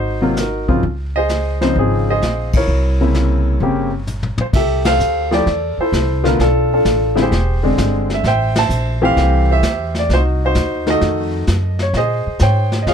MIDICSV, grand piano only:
0, 0, Header, 1, 2, 480
1, 0, Start_track
1, 0, Tempo, 462963
1, 857, Time_signature, 4, 2, 24, 8
1, 13415, End_track
2, 0, Start_track
2, 0, Title_t, "Grand piano"
2, 0, Program_c, 0, 0
2, 0, Note_on_c, 0, 63, 59
2, 0, Note_on_c, 0, 66, 55
2, 0, Note_on_c, 0, 72, 85
2, 224, Note_on_c, 0, 48, 66
2, 225, Note_on_c, 0, 54, 61
2, 233, Note_on_c, 0, 58, 60
2, 233, Note_on_c, 0, 65, 72
2, 362, Note_off_c, 0, 48, 0
2, 362, Note_off_c, 0, 54, 0
2, 366, Note_off_c, 0, 58, 0
2, 366, Note_off_c, 0, 65, 0
2, 406, Note_off_c, 0, 66, 0
2, 409, Note_off_c, 0, 63, 0
2, 409, Note_off_c, 0, 72, 0
2, 416, Note_on_c, 0, 70, 66
2, 421, Note_on_c, 0, 66, 45
2, 424, Note_on_c, 0, 63, 42
2, 707, Note_on_c, 0, 53, 58
2, 708, Note_on_c, 0, 49, 63
2, 710, Note_on_c, 0, 60, 55
2, 715, Note_on_c, 0, 65, 74
2, 844, Note_off_c, 0, 49, 0
2, 844, Note_off_c, 0, 53, 0
2, 845, Note_off_c, 0, 60, 0
2, 846, Note_off_c, 0, 70, 0
2, 848, Note_off_c, 0, 65, 0
2, 848, Note_off_c, 0, 66, 0
2, 850, Note_off_c, 0, 63, 0
2, 1200, Note_on_c, 0, 75, 97
2, 1218, Note_on_c, 0, 68, 66
2, 1218, Note_on_c, 0, 72, 68
2, 1641, Note_off_c, 0, 75, 0
2, 1661, Note_off_c, 0, 72, 0
2, 1670, Note_on_c, 0, 49, 59
2, 1671, Note_on_c, 0, 53, 55
2, 1677, Note_on_c, 0, 72, 77
2, 1678, Note_on_c, 0, 60, 58
2, 1682, Note_on_c, 0, 63, 64
2, 1830, Note_off_c, 0, 72, 0
2, 1835, Note_off_c, 0, 60, 0
2, 1839, Note_off_c, 0, 68, 0
2, 1851, Note_on_c, 0, 60, 53
2, 1854, Note_on_c, 0, 68, 74
2, 1857, Note_on_c, 0, 65, 52
2, 2165, Note_off_c, 0, 68, 0
2, 2181, Note_on_c, 0, 68, 59
2, 2182, Note_on_c, 0, 75, 87
2, 2187, Note_on_c, 0, 72, 60
2, 2272, Note_off_c, 0, 49, 0
2, 2273, Note_off_c, 0, 53, 0
2, 2278, Note_off_c, 0, 63, 0
2, 2660, Note_off_c, 0, 75, 0
2, 2664, Note_on_c, 0, 64, 54
2, 2664, Note_on_c, 0, 70, 57
2, 2664, Note_on_c, 0, 73, 76
2, 2756, Note_off_c, 0, 60, 0
2, 2757, Note_off_c, 0, 68, 0
2, 2760, Note_off_c, 0, 65, 0
2, 2760, Note_off_c, 0, 72, 0
2, 3113, Note_off_c, 0, 64, 0
2, 3119, Note_on_c, 0, 49, 55
2, 3120, Note_on_c, 0, 58, 51
2, 3120, Note_on_c, 0, 60, 53
2, 3128, Note_on_c, 0, 64, 60
2, 3718, Note_off_c, 0, 49, 0
2, 3718, Note_off_c, 0, 58, 0
2, 3719, Note_off_c, 0, 60, 0
2, 3723, Note_off_c, 0, 64, 0
2, 3749, Note_on_c, 0, 49, 61
2, 3755, Note_on_c, 0, 58, 55
2, 3760, Note_on_c, 0, 60, 52
2, 3763, Note_on_c, 0, 67, 66
2, 4042, Note_off_c, 0, 49, 0
2, 4045, Note_off_c, 0, 58, 0
2, 4047, Note_off_c, 0, 60, 0
2, 4049, Note_off_c, 0, 67, 0
2, 4529, Note_off_c, 0, 70, 0
2, 4529, Note_off_c, 0, 73, 0
2, 4570, Note_on_c, 0, 72, 68
2, 4622, Note_off_c, 0, 72, 0
2, 4717, Note_on_c, 0, 76, 83
2, 4727, Note_on_c, 0, 67, 63
2, 4729, Note_on_c, 0, 69, 58
2, 5017, Note_off_c, 0, 76, 0
2, 5039, Note_off_c, 0, 69, 0
2, 5042, Note_on_c, 0, 77, 98
2, 5052, Note_on_c, 0, 72, 58
2, 5055, Note_on_c, 0, 69, 59
2, 5505, Note_on_c, 0, 53, 63
2, 5506, Note_off_c, 0, 67, 0
2, 5510, Note_on_c, 0, 57, 56
2, 5514, Note_on_c, 0, 64, 59
2, 5521, Note_on_c, 0, 67, 74
2, 5532, Note_off_c, 0, 77, 0
2, 5535, Note_off_c, 0, 69, 0
2, 5538, Note_on_c, 0, 74, 98
2, 5551, Note_on_c, 0, 69, 58
2, 5647, Note_off_c, 0, 53, 0
2, 5649, Note_off_c, 0, 57, 0
2, 5651, Note_off_c, 0, 64, 0
2, 5655, Note_off_c, 0, 67, 0
2, 5962, Note_off_c, 0, 72, 0
2, 5974, Note_off_c, 0, 74, 0
2, 6005, Note_off_c, 0, 69, 0
2, 6020, Note_on_c, 0, 69, 56
2, 6020, Note_on_c, 0, 72, 76
2, 6021, Note_on_c, 0, 64, 55
2, 6465, Note_on_c, 0, 50, 70
2, 6470, Note_on_c, 0, 65, 85
2, 6472, Note_on_c, 0, 57, 67
2, 6474, Note_on_c, 0, 59, 64
2, 6501, Note_off_c, 0, 72, 0
2, 6508, Note_on_c, 0, 70, 78
2, 6598, Note_off_c, 0, 69, 0
2, 6599, Note_off_c, 0, 64, 0
2, 6607, Note_off_c, 0, 50, 0
2, 6609, Note_off_c, 0, 65, 0
2, 6610, Note_off_c, 0, 57, 0
2, 6611, Note_off_c, 0, 59, 0
2, 6647, Note_on_c, 0, 69, 86
2, 6648, Note_off_c, 0, 70, 0
2, 6652, Note_on_c, 0, 62, 60
2, 6652, Note_on_c, 0, 65, 66
2, 6969, Note_off_c, 0, 62, 0
2, 6969, Note_off_c, 0, 65, 0
2, 6970, Note_off_c, 0, 69, 0
2, 6984, Note_on_c, 0, 65, 59
2, 6985, Note_on_c, 0, 62, 55
2, 6986, Note_on_c, 0, 69, 74
2, 7417, Note_off_c, 0, 69, 0
2, 7417, Note_on_c, 0, 50, 70
2, 7422, Note_on_c, 0, 56, 63
2, 7427, Note_on_c, 0, 64, 74
2, 7430, Note_on_c, 0, 60, 61
2, 7482, Note_on_c, 0, 67, 61
2, 7484, Note_on_c, 0, 68, 64
2, 7493, Note_on_c, 0, 72, 84
2, 7560, Note_off_c, 0, 62, 0
2, 7560, Note_off_c, 0, 65, 0
2, 7563, Note_off_c, 0, 50, 0
2, 7565, Note_off_c, 0, 56, 0
2, 7568, Note_off_c, 0, 64, 0
2, 7569, Note_off_c, 0, 60, 0
2, 7913, Note_on_c, 0, 50, 66
2, 7919, Note_on_c, 0, 56, 67
2, 7919, Note_on_c, 0, 60, 61
2, 7922, Note_on_c, 0, 62, 73
2, 8375, Note_off_c, 0, 67, 0
2, 8376, Note_off_c, 0, 68, 0
2, 8439, Note_on_c, 0, 76, 82
2, 8450, Note_off_c, 0, 72, 0
2, 8514, Note_off_c, 0, 50, 0
2, 8517, Note_off_c, 0, 56, 0
2, 8517, Note_off_c, 0, 60, 0
2, 8519, Note_off_c, 0, 62, 0
2, 8555, Note_off_c, 0, 76, 0
2, 8570, Note_on_c, 0, 76, 78
2, 8575, Note_on_c, 0, 72, 76
2, 8582, Note_on_c, 0, 79, 96
2, 8881, Note_off_c, 0, 72, 0
2, 8886, Note_off_c, 0, 76, 0
2, 8897, Note_on_c, 0, 72, 68
2, 8899, Note_off_c, 0, 79, 0
2, 8902, Note_on_c, 0, 76, 65
2, 8903, Note_on_c, 0, 81, 108
2, 9348, Note_on_c, 0, 52, 79
2, 9349, Note_on_c, 0, 57, 67
2, 9352, Note_on_c, 0, 60, 67
2, 9360, Note_off_c, 0, 72, 0
2, 9360, Note_on_c, 0, 67, 88
2, 9375, Note_on_c, 0, 72, 71
2, 9380, Note_off_c, 0, 81, 0
2, 9382, Note_on_c, 0, 77, 110
2, 9803, Note_off_c, 0, 76, 0
2, 9848, Note_off_c, 0, 72, 0
2, 9849, Note_off_c, 0, 67, 0
2, 9859, Note_off_c, 0, 77, 0
2, 9863, Note_on_c, 0, 72, 62
2, 9865, Note_on_c, 0, 67, 62
2, 9873, Note_on_c, 0, 76, 106
2, 9950, Note_off_c, 0, 52, 0
2, 9951, Note_off_c, 0, 57, 0
2, 9952, Note_off_c, 0, 60, 0
2, 10344, Note_off_c, 0, 76, 0
2, 10356, Note_on_c, 0, 74, 87
2, 10436, Note_off_c, 0, 72, 0
2, 10437, Note_off_c, 0, 67, 0
2, 10489, Note_off_c, 0, 74, 0
2, 10506, Note_on_c, 0, 66, 63
2, 10508, Note_on_c, 0, 63, 66
2, 10509, Note_on_c, 0, 72, 93
2, 10577, Note_off_c, 0, 72, 0
2, 10816, Note_off_c, 0, 66, 0
2, 10817, Note_off_c, 0, 63, 0
2, 10832, Note_on_c, 0, 66, 57
2, 10833, Note_on_c, 0, 63, 62
2, 10843, Note_on_c, 0, 72, 88
2, 11253, Note_off_c, 0, 63, 0
2, 11260, Note_off_c, 0, 66, 0
2, 11268, Note_on_c, 0, 51, 67
2, 11269, Note_on_c, 0, 63, 60
2, 11273, Note_on_c, 0, 57, 60
2, 11276, Note_on_c, 0, 66, 70
2, 11302, Note_on_c, 0, 69, 61
2, 11305, Note_on_c, 0, 75, 102
2, 11307, Note_off_c, 0, 72, 0
2, 11867, Note_off_c, 0, 51, 0
2, 11868, Note_off_c, 0, 63, 0
2, 11869, Note_off_c, 0, 57, 0
2, 11871, Note_off_c, 0, 66, 0
2, 12200, Note_off_c, 0, 69, 0
2, 12260, Note_on_c, 0, 73, 78
2, 12271, Note_off_c, 0, 75, 0
2, 12384, Note_off_c, 0, 73, 0
2, 12410, Note_on_c, 0, 75, 89
2, 12415, Note_on_c, 0, 72, 65
2, 12419, Note_on_c, 0, 68, 59
2, 12862, Note_off_c, 0, 72, 0
2, 12878, Note_on_c, 0, 72, 62
2, 12879, Note_on_c, 0, 73, 61
2, 12882, Note_on_c, 0, 79, 91
2, 12885, Note_off_c, 0, 75, 0
2, 13299, Note_on_c, 0, 75, 61
2, 13312, Note_off_c, 0, 68, 0
2, 13313, Note_off_c, 0, 79, 0
2, 13338, Note_off_c, 0, 75, 0
2, 13339, Note_off_c, 0, 73, 0
2, 13355, Note_on_c, 0, 73, 59
2, 13357, Note_on_c, 0, 77, 81
2, 13361, Note_on_c, 0, 68, 57
2, 13415, Note_off_c, 0, 68, 0
2, 13415, Note_off_c, 0, 72, 0
2, 13415, Note_off_c, 0, 73, 0
2, 13415, Note_off_c, 0, 77, 0
2, 13415, End_track
0, 0, End_of_file